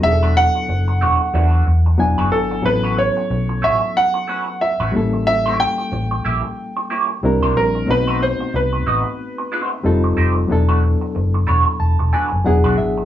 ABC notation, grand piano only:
X:1
M:4/4
L:1/8
Q:"Swing 16ths" 1/4=92
K:Emix
V:1 name="Grand piano"
e f6 A | B c2 e f2 e2 | e =g6 _B | B =c B6- |
B6 z2 |]